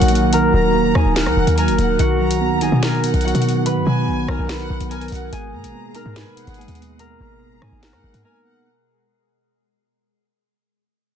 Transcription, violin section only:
Already playing: F#5
0.54 A#5
1.16 F#5
1.58 G#5
1.78 F#5
2.20 A#5
2.83 G#5
3.03 F#5
3.87 G#5
4.49 F#5
4.91 G#5
5.12 F#5
5.53 A#5
6.16 G#5
6.37 F#5
7.20 A#5
7.83 F#5
8.24 G#5
8.45 F#5

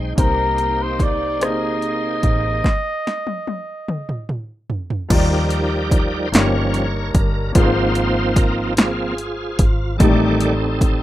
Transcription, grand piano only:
Already playing: G#3 D#4 G#4 C5 D#5 G5
0.15 C3 A#3 D#4 G4 C5
1.39 C3 A#3 D4 G#4 C5
1.46 D#4
5.08 D#3 G3 D#4 F4 D5
6.32 G2 A#3 D#4 G4 C#5
7.52 G#2 A#3 F4 G#4
7.58 B4
7.64 C5
9.97 A2 G3 D#4 G4
10.03 A3 D5

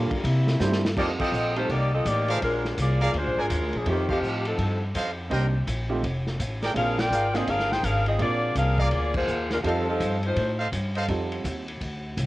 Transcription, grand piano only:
0.59 G3 C4 D4 E4 C5
0.96 G3 C4 D#4 F4 A4
1.56 G3 C4 D#4 F4 A4
3.86 A3 C4 D#4 F4 G4
5.30 A#3 C4 D4 D#4 G4
5.89 A3 C4 D#4 F4 G4
6.74 A#3 C4 D4 F4 G#4
7.34 A#3 C4 D4 F4 G#4
8.18 A#3 C4 D4 F4 G#4
9.63 G3 C4 D#4 F4 A4
11.09 G3 C4 D#4 F4 A4

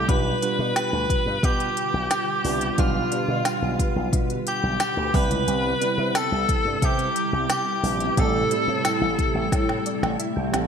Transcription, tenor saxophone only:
Already playing: G4
0.09 B4
0.77 B4
1.44 G4
2.80 F4
4.48 G4
5.15 B4
6.17 A4
6.84 G4
7.52 G4
8.19 A4

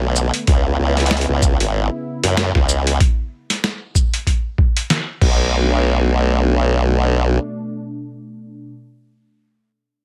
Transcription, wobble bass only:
Already playing: B1
0.48 C#2
0.79 C#2
1.29 C#2
1.61 G#1
2.24 F#2
2.55 C#2
5.22 B1

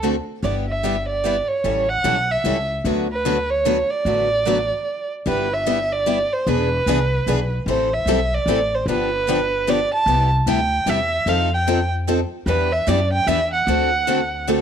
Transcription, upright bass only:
Already playing: D2
0.43 G1
1.64 A1
2.04 B1
2.44 C#2
2.84 D2
4.05 A1
5.26 G1
6.47 E1
6.86 C2
7.26 B1
7.66 A1
8.06 B1
8.46 A1
8.86 G1
10.06 C2
10.46 D2
10.86 E2
11.26 F2
12.46 E2
12.87 F#2
13.27 E2
13.67 D2

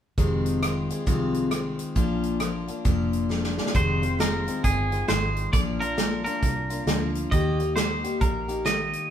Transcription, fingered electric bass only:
0.18 F1
1.07 C2
1.96 A#1
2.85 F1
3.75 F1
4.64 G1
5.09 G#1
5.53 A#1
6.43 C2
6.87 D2
7.32 D#2
8.21 A#1

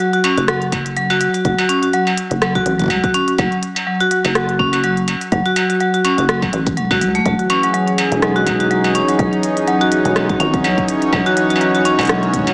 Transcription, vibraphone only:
0.00 F#3
0.13 F#4
0.24 C#4
0.38 F#4
0.48 F#3
0.97 F#3
1.10 F#4
1.21 F#3
1.34 F#4
1.45 F#3
1.58 F#4
1.69 C#4
1.83 F#4
1.93 F#3
2.42 F#3
2.55 F#4
2.66 F#3
2.79 F#4
2.90 F#3
3.04 F#4
3.14 C#4
3.28 F#4
3.39 F#3
3.87 F#3
4.00 F#4
4.11 F#3
4.25 F#4
4.35 F#3
4.49 F#4
4.59 C#4
4.73 F#4
4.84 F#3
5.32 F#3
5.46 F#4
5.56 F#3
5.70 F#4
5.80 F#3
5.94 F#4
6.05 C#4
6.18 F#4
6.29 F#3
6.77 F#3
6.91 F#4
7.01 F#3
7.15 A3
7.26 F#3
7.39 F#4
7.50 C#4
7.63 F#3
7.74 F#3
8.22 F#3
8.36 F#4
8.47 F#3
8.60 F#4
8.71 F#3
8.84 F#4
8.95 C#4
9.08 F#3
9.19 F#3
9.67 F#3
9.81 F#4
9.92 F#3
10.05 F#4
10.16 F#3
10.29 F#4
10.40 C#4
10.54 F#3
10.64 F#3
11.13 F#3
11.26 F#4
11.37 F#3
11.50 F#4
11.61 F#3
11.75 F#4
11.85 C#4
11.99 F#3
12.09 F#3

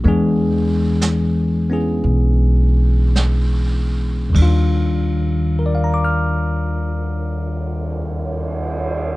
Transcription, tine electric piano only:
0.04 E3 G#3 B3 D4
0.08 G#4
1.70 B3 C#4 E4 G#4
4.30 D#2 D#3
4.35 G3 D4
4.42 F4
5.59 A#4
5.66 D5
5.75 F5
5.84 A#5
5.94 D6
6.05 F6

